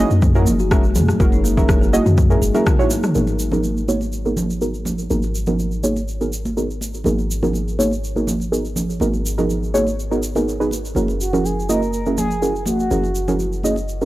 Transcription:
Already playing: synth stab C#4 E4 F#4 G#4 D#5
0.10 808-style bass F#2, muted conga, shaker
0.22 kalimba A#3, kick, mid tom, shaker
0.35 synth stab C#4 E4 F#4 G#4 A#4, kalimba G#4, high conga, shaker
0.47 808-style bass F#1, high conga, low conga, shaker
0.59 kalimba F#4, muted conga, shaker
0.71 kalimba G#3, synth stab C#4 E4 F#4 G#4 A#4, kick, cross-stick, shaker
0.83 shaker
0.95 808-style bass F#2, kalimba G#4, mid tom, muted conga, high conga, low conga, shaker
1.08 kalimba F#3, cross-stick, shaker
1.20 808-style bass F#1, synth stab C#4 E4 F#4 G#4 A#4, kick, high conga, low conga, shaker
1.32 kalimba D#4, muted conga, shaker
1.44 kalimba A#3, shaker
1.57 synth stab C#4 E4 F#4 G#4 A#4, kick, low conga, shaker
1.68 kalimba A#3, kick, cross-stick, muted conga, high conga, shaker
1.81 kalimba G#4, shaker
1.93 synth stab C#4 E4 F#4 G#4 D#5, high conga, shaker
2.06 808-style bass F#2, kalimba F#4, mid tom, muted conga, shaker
2.17 kalimba G#3, kick, mid tom, shaker
2.30 synth stab C#4 E4 F#4 G#4 A#4, shaker
2.42 808-style bass F#1, kalimba G#4, shaker
2.54 kalimba F#3, synth stab C#4 E4 F#4 G#4 A#4, muted conga, high conga, shaker
2.66 kick, cross-stick, mid tom, high tom, shaker
2.79 synth stab C#4 E4 F#4 G#4 C#5, kalimba D#4, high tom, shaker
2.90 kalimba A#3, muted conga, shaker
3.03 cross-stick, mid tom, shaker
3.15 808-style bass G#1, synth stab B3 D#4 F#4 G#4 A#4, high conga, low conga, shaker
3.27 muted conga, shaker
3.39 shaker
3.52 synth stab B3 D#4 F#4 G#4 A#4, low conga, shaker
3.64 muted conga, high conga, shaker
3.77 shaker
3.88 synth stab B3 D#4 F#4 G#4 C#5, high conga, shaker
4.01 muted conga, shaker
4.12 shaker
4.25 synth stab B3 D#4 F#4 G#4 A#4, high conga, shaker
4.37 high conga, low conga, shaker
4.50 muted conga, shaker
4.61 synth stab B3 D#4 F#4 G#4 A#4, shaker
4.74 shaker
4.85 muted conga, high conga, low conga, shaker
4.98 shaker
5.10 808-style bass G#1, synth stab B3 D#4 F#4 G#4 A#4, high conga, low conga, shaker
5.23 muted conga, shaker
5.35 shaker
5.46 synth stab B3 D#4 F#4 G#4 A#4, low conga, shaker
5.59 muted conga, shaker
5.71 shaker
5.83 synth stab B3 D#4 F#4 G#4 C#5, high conga, shaker
5.96 muted conga, shaker
6.08 shaker
6.21 synth stab B3 D#4 F#4 G#4 A#4, shaker
6.33 shaker
6.45 muted conga, high conga, shaker
6.57 synth stab B3 D#4 F#4 G#4 A#4, shaker
6.71 shaker
6.81 muted conga, shaker
6.94 shaker
7.04 808-style bass G#1, synth stab B3 D#4 F#4 G#4 A#4, high conga, low conga, shaker
7.19 muted conga, shaker
7.31 shaker
7.43 synth stab B3 D#4 F#4 G#4 A#4, low conga, shaker
7.53 muted conga, high conga, shaker
7.68 shaker
7.79 synth stab B3 D#4 F#4 G#4 C#5, high conga, shaker
7.91 muted conga, shaker
8.04 shaker
8.16 synth stab B3 D#4 F#4 G#4 A#4, high conga, shaker
8.27 high conga, low conga, shaker
8.40 muted conga, shaker
8.52 synth stab B3 D#4 F#4 G#4 A#4, shaker
8.65 shaker
8.76 muted conga, high conga, low conga, shaker
8.90 shaker
9.00 808-style bass G#1, synth stab B3 D#4 F#4 G#4 A#4, high conga, low conga, shaker
9.13 muted conga, shaker
9.26 shaker
9.38 synth stab B3 D#4 F#4 G#4 A#4, low conga, shaker
9.49 muted conga, shaker
9.63 shaker
9.74 synth stab B3 D#4 F#4 G#4 C#5, high conga, shaker
9.87 muted conga, shaker
9.99 shaker
10.11 synth stab B3 D#4 F#4 G#4 A#4, shaker
10.23 shaker
10.35 synth stab B3 D#4 F#4 G#4 A#4, muted conga, high conga, shaker
10.49 shaker
10.60 synth stab B3 D#4 F#4 G#4 B4, shaker
10.71 muted conga, shaker
10.85 shaker
10.95 808-style bass F#1, synth stab C#4 E4 F#4 G#4 A#4, high conga, low conga, shaker
11.08 muted conga, shaker
11.20 analog synth lead F#4, shaker
11.33 synth stab C#4 E4 F#4 G#4 A#4, low conga, shaker
11.44 analog synth lead G#4, muted conga, high conga, shaker
11.60 shaker
11.69 synth stab C#4 E4 F#4 G#4 D#5, analog synth lead A#4, high conga, shaker
11.82 muted conga, shaker
11.93 analog synth lead A#4, shaker
12.06 synth stab C#4 E4 F#4 G#4 A#4, high conga, shaker
12.18 analog synth lead G#4, high conga, low conga, shaker
12.30 muted conga, shaker
12.42 synth stab C#4 E4 F#4 G#4 A#4, shaker
12.56 shaker
12.66 analog synth lead F#4, muted conga, high conga, low conga, shaker
12.80 analog synth lead F#4, shaker
12.91 808-style bass F#1, synth stab C#4 E4 F#4 G#4 A#4, high conga, low conga, shaker
13.03 muted conga, shaker
13.15 shaker
13.28 synth stab C#4 E4 F#4 G#4 A#4, low conga, shaker
13.39 muted conga, shaker
13.53 shaker
13.63 synth stab C#4 E4 F#4 G#4 D#5, high conga, shaker
13.76 muted conga, shaker
13.89 shaker
14.01 synth stab C#4 E4 F#4 G#4 A#4, shaker

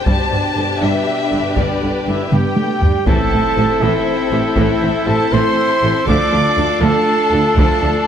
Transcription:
Already playing: violin section C5
0.06 double bass section G1, cello section G2, french horn section B2 D4, viola section G3 D4, violin section G4 A5, taiko
0.31 double bass section G1, cello section G2, viola section D3
0.56 double bass section G1, cello section G2, viola section D3
0.80 double bass section G1, cello section G2, viola section G3, violin section B4 E5
1.32 double bass section G1, cello section G2, viola section D3
1.56 double bass section G1, cello section G2, viola section G3, violin section D5, taiko
1.82 double bass section G1, cello section G2, viola section D3
2.07 double bass section G1, cello section G2, viola section D3, trumpet E4, violin section E5
2.32 double bass section G1, cello section G2, viola section B3, trumpet G4, violin section G5, taiko mid
2.57 viola section A3, taiko high
2.82 double bass section G1, cello section G2, viola section G3, taiko low
3.06 double bass section A1, cello section A2, viola section E3 A3, violin section C4 A4 A5, french horn section C4 E4, pipe organ E4 A4 C5 E5, trumpet A4, taiko, impact
3.32 double bass section A1, cello section A2, viola section E3
3.57 double bass section A1, cello section A2, viola section C3 E3
3.82 double bass section A1, cello section A2, viola section E3 A3, trumpet E4, violin section E5
4.32 double bass section A1, cello section A2, viola section C3 E3
4.56 double bass section A1, cello section A2, viola section E3 A3, trumpet E4, violin section E5, taiko
4.82 double bass section A1, cello section A2, viola section E3
5.07 double bass section A1, cello section A2, viola section C3 E3, trumpet A4, violin section A5
5.32 double bass section A1, cello section A2, viola section E3 A3, trumpet C5, violin section C6
5.83 double bass section A1, cello section A2, viola section C3 E3
6.07 double bass section D2, cello section D2, viola section F3 A3, french horn section A3 F4, violin section D4 A4 D6, pipe organ D4 D5 F5, trumpet D5, taiko
6.32 double bass section D2, cello section D2, viola section F3
6.57 double bass section D2, cello section D2, viola section D3 F3
6.81 double bass section D2, cello section D2, viola section F3 A3, trumpet A4, violin section A5
7.31 double bass section D2, cello section D2, viola section D3 F3
7.56 double bass section D2, cello section D2, viola section F3 A3, trumpet A4, violin section A5, taiko
7.81 double bass section D2, cello section D2, viola section F3

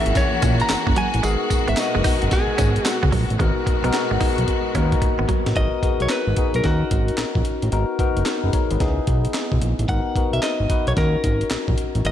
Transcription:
Already playing: string section E3 A#3 F#4, tine electric piano C#4 E4 G#4 A#4, clean electric guitar E5
0.06 analog synth bass G#1, closed hi-hat
0.15 clean electric guitar C#5, kick, snare, closed hi-hat, tambourine
0.42 analog synth bass A#1, clean electric guitar C#4, kick, closed hi-hat, tambourine
0.60 clean electric guitar A#5, closed hi-hat
0.70 analog synth bass F#1, muted clean electric guitar stroke, snare, clap, closed hi-hat, tambourine
0.87 analog synth bass F#1, clean electric guitar A#3, kick
0.96 clean electric guitar F#3 G#5, closed hi-hat
1.14 analog synth bass A1, closed hi-hat
1.23 analog synth bass G#1, string section B2 G#3, clean electric guitar G#3 G#4, tine electric piano B3 D#4 F#4 A#4, closed hi-hat, tambourine
1.50 muted clean electric guitar stroke, kick, closed hi-hat, tambourine
1.68 analog synth bass G#1, clean electric guitar B3 E5, closed hi-hat
1.77 tine electric piano B3 D#4 F#4 A#4, clean electric guitar D#5, muted clean electric guitar stroke, snare, clap, closed hi-hat, tambourine
1.95 analog synth bass F#1, clean electric guitar G#3
2.04 clean electric guitar D#4, kick, open hi-hat, tambourine
2.22 analog synth bass F#1, closed hi-hat
2.31 clean electric guitar G#4, kick, snare, closed hi-hat, tambourine
2.58 analog synth bass G#1, clean electric guitar C#4, kick, closed hi-hat, tambourine
2.76 closed hi-hat
2.85 clean electric guitar F#4, muted clean electric guitar stroke, snare, clap, closed hi-hat, tambourine
3.03 analog synth bass C#2, clean electric guitar B3, kick
3.12 analog synth bass A#1, clean electric guitar F#3, kick, open hi-hat
3.30 analog synth bass A1, closed hi-hat
3.39 analog synth bass G#1, string section B2 G#3 F#4, clean electric guitar G#3, tine electric piano B3 D#4 F#4 A#4, kick, closed hi-hat
3.66 muted clean electric guitar stroke, kick, closed hi-hat
3.84 analog synth bass B1, clean electric guitar B3, tine electric piano B3 D#4 F#4 A#4, closed hi-hat
3.93 muted clean electric guitar stroke, snare, clap, closed hi-hat
4.11 analog synth bass G#1, clean electric guitar G#3
4.21 clean electric guitar D#4, kick, open hi-hat
4.38 analog synth bass B1, closed hi-hat
4.48 kick, closed hi-hat
4.75 analog synth bass D#2, tine electric piano A#3 D#4 F#4 A#4, clean electric guitar C#4, kick, closed hi-hat
4.81 tine electric piano B3
4.92 kick, closed hi-hat
5.02 analog synth bass G#1, muted clean electric guitar stroke, kick, closed hi-hat
5.19 analog synth bass G#1, clean electric guitar B3
5.29 clean electric guitar F#3, kick, closed hi-hat
5.46 analog synth bass A1, snare, closed hi-hat
5.56 analog synth bass G#1, tine electric piano B3 D#4 F#4 A#4, clean electric guitar D#5, kick, closed hi-hat
5.83 tine electric piano B3 D#4 F#4 G#4, kick, closed hi-hat
6.00 analog synth bass B1, clean electric guitar C#5, closed hi-hat
6.09 clean electric guitar B4, snare, clap, closed hi-hat
6.27 analog synth bass G#1
6.37 tine electric piano B3 D#4 F#4 G#4, kick, closed hi-hat
6.54 analog synth bass B1, clean electric guitar A#4, closed hi-hat
6.64 analog synth bass D#2, tine electric piano C#4 D#4 F#4 A#4, clean electric guitar F#4, kick, snare, closed hi-hat
6.91 analog synth bass G#1, kick, closed hi-hat
7.08 closed hi-hat
7.18 analog synth bass A#1, snare, clap, closed hi-hat
7.35 analog synth bass A#1, kick
7.45 closed hi-hat
7.62 analog synth bass A1, closed hi-hat
7.72 analog synth bass G#1, tine electric piano B3 D#4 F#4 A#4, closed hi-hat
7.99 tine electric piano B3 D#4 F#4 A#4, kick, closed hi-hat
8.17 analog synth bass F#1, closed hi-hat
8.26 snare, clap, closed hi-hat
8.44 analog synth bass F#1, tine electric piano G#4 B4
8.53 tine electric piano A#4 C#5, kick, closed hi-hat
8.71 analog synth bass G#1, tine electric piano B4 D#5, closed hi-hat
8.80 analog synth bass C#2, tine electric piano B3 D#4 E4 G#4, kick, snare, closed hi-hat
9.07 analog synth bass B1, kick, closed hi-hat
9.25 closed hi-hat
9.34 snare, clap, closed hi-hat
9.52 analog synth bass B1, kick
9.62 analog synth bass A#1, closed hi-hat
9.79 analog synth bass A1, closed hi-hat
9.88 analog synth bass G#1, tine electric piano B3 D#4 F#4 A#4, clean electric guitar F#5, kick, closed hi-hat
10.15 tine electric piano B3 D#4 F#4 A#4, kick, closed hi-hat
10.33 analog synth bass B1, clean electric guitar E5, closed hi-hat
10.43 clean electric guitar D#5, snare, clap, closed hi-hat
10.60 analog synth bass G#1
10.69 tine electric piano B3 D#4 F#4 B4, kick, closed hi-hat
10.87 analog synth bass B1, clean electric guitar C#5, closed hi-hat
10.96 analog synth bass D#2, tine electric piano C#4 D#4 F#4 A#4, clean electric guitar A#4, kick, snare, closed hi-hat
11.24 analog synth bass G#1, kick, closed hi-hat
11.41 closed hi-hat
11.51 analog synth bass A#1, snare, clap, closed hi-hat
11.68 analog synth bass A#1, kick
11.78 closed hi-hat
11.95 analog synth bass A1, closed hi-hat
12.05 analog synth bass G#1, tine electric piano B3 D#4 F#4 A#4, clean electric guitar D#5, closed hi-hat

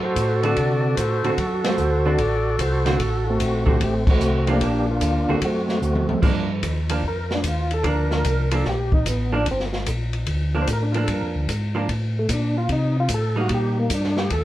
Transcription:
Already playing: tonewheel organ F#2
0.03 tonewheel organ F#4 A4 C5
0.16 tonewheel organ A2, kick, hi-hat pedal, ride
0.43 hollow-body jazz guitar D3 A3 C4 F#4, tonewheel organ F#4 A4 D5, ride
0.56 tonewheel organ C3, kick, ride
0.82 tonewheel organ D5
0.97 tonewheel organ A2 F#4 A4 C5, kick, hi-hat pedal, ride
1.24 tonewheel organ A2, hollow-body jazz guitar D3 A3 C4 F#4, ride
1.38 tonewheel organ F#2, kick, ride
1.64 tonewheel organ F#4 A4 C5, snare, ride
1.78 tonewheel organ D2, hi-hat pedal
2.06 hollow-body jazz guitar D3 A3 C4 F#4, tonewheel organ F#4 A4 D5
2.18 tonewheel organ A1, kick, ride
2.59 tonewheel organ C2 F#4 A4 C5, kick, hi-hat pedal, ride
2.86 hollow-body jazz guitar D3 A3 C4 F#4, snare, ride
2.99 tonewheel organ A1, kick, ride
3.27 tonewheel organ A3 C4 F#4
3.40 tonewheel organ A#1, kick, hi-hat pedal, ride
3.66 hollow-body jazz guitar D3 A3 C4 F#4, tonewheel organ G4, kick
3.80 tonewheel organ A1 G4, kick, ride
3.84 tonewheel organ C4
4.07 tonewheel organ F#4, kick, crash
4.11 tonewheel organ A3 C4
4.20 tonewheel organ C2, hi-hat pedal
4.47 hollow-body jazz guitar F3 A#3 D4, tonewheel organ A#3 D4 G4, ride
4.61 tonewheel organ A#1, hollow-body jazz guitar F3 A#3 D4, kick, ride
4.90 tonewheel organ A#3 D4 F4
5.01 tonewheel organ D2, kick, hi-hat pedal, ride
5.28 tonewheel organ D2 G4, hollow-body jazz guitar D3 A3 C4 F#4
5.42 tonewheel organ F#2 F#4, kick, ride
5.46 tonewheel organ A3 C4
5.69 snare
5.82 tonewheel organ D2, hi-hat pedal
5.95 mid tom
6.09 tonewheel organ D2, mid tom
6.22 tonewheel organ G2, hollow-body jazz guitar F3 A#3 D4, kick, crash
6.63 tonewheel organ D#2, kick, hi-hat pedal, ride
6.89 hollow-body jazz guitar F3 A#3 D4, ride
7.03 tonewheel organ F2, kick
7.08 tonewheel organ A#4
7.31 tonewheel organ D4, snare
7.44 tonewheel organ D#2 F4, kick, hi-hat pedal, ride
7.71 tonewheel organ A4, ride
7.83 tonewheel organ D2, hollow-body jazz guitar F3 A#3 D4, kick, ride
7.88 tonewheel organ A#4
8.11 snare
8.25 tonewheel organ C2, kick, hi-hat pedal, ride
8.51 hollow-body jazz guitar F3 A#3 D4, tonewheel organ A4, ride
8.65 tonewheel organ A#1, kick, snare
8.69 tonewheel organ G4
8.92 tonewheel organ D#4, kick
9.05 tonewheel organ A1 B3, kick, hi-hat pedal, ride
9.32 hollow-body jazz guitar F3 A#3 D4, tonewheel organ D4
9.46 tonewheel organ G1, kick, ride
9.51 tonewheel organ C4
9.60 snare
9.73 snare
9.86 tonewheel organ A#1, kick, hi-hat pedal, ride
10.13 ride
10.27 tonewheel organ D2, kick, ride
10.55 hollow-body jazz guitar F3 A#3 D4
10.62 tonewheel organ C5
10.67 tonewheel organ A2, kick, hi-hat pedal, ride
10.73 tonewheel organ A#4
10.83 tonewheel organ D4
10.92 hollow-body jazz guitar F3 A#3, tonewheel organ F4, ride
10.96 hollow-body jazz guitar D4
11.04 tonewheel organ A4
11.08 tonewheel organ G2, kick, ride
11.13 tonewheel organ A#4
11.22 tonewheel organ F2
11.35 tonewheel organ D2
11.48 tonewheel organ G#2, kick, hi-hat pedal, ride
11.75 hollow-body jazz guitar F3 A#3 D4
11.89 tonewheel organ A2, kick, ride
12.19 tonewheel organ A3
12.29 tonewheel organ A#2, kick, hi-hat pedal, ride
12.33 tonewheel organ D4
12.58 tonewheel organ F4
12.69 tonewheel organ C3 D#4, kick, ride
13.00 tonewheel organ F4
13.09 tonewheel organ A2, kick, hi-hat pedal, ride
13.14 tonewheel organ A4
13.36 hollow-body jazz guitar G3 A#3 D#4
13.41 tonewheel organ F#4
13.49 tonewheel organ A#2, kick, ride
13.54 tonewheel organ G4
13.79 tonewheel organ A#3
13.90 tonewheel organ G2, kick, hi-hat pedal, ride
13.94 tonewheel organ D4
14.04 snare
14.17 tonewheel organ G4, snare
14.30 tonewheel organ D#2 A4, kick, ride

